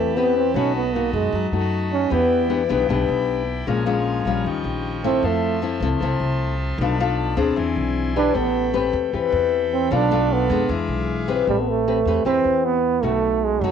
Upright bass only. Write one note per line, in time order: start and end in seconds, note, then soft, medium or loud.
0.00 0.51 E2 medium
0.54 1.09 B1 medium
1.13 1.32 F#2 medium
1.33 1.51 F#2 medium
1.52 2.07 F#2 medium
2.11 2.66 E2 medium
2.70 2.88 B1 medium
2.89 3.07 B1 medium
3.08 3.63 B1 medium
3.67 4.22 A#1 medium
4.25 4.44 A#1 medium
4.44 4.63 D#2 medium
4.64 5.19 A#1 medium
5.22 5.77 F2 medium
5.80 5.99 C2 medium
6.00 6.19 C2 medium
6.20 6.75 C2 medium
6.78 7.33 B1 loud
7.37 7.55 D2 medium
7.57 7.75 E2 medium
7.76 8.31 B1 medium
8.35 8.90 A1 medium
8.93 9.12 E2 medium
9.13 9.31 E2 medium
9.32 9.87 E2 medium
9.91 10.45 B1 loud
10.49 10.68 F2 medium
10.69 10.87 E2 loud
10.88 11.43 B1 medium
11.47 12.02 A1 medium
12.05 12.24 E2 medium
12.25 12.43 E2 medium
12.45 12.99 E2 medium
13.03 13.57 B1 medium
13.61 13.71 F#2 medium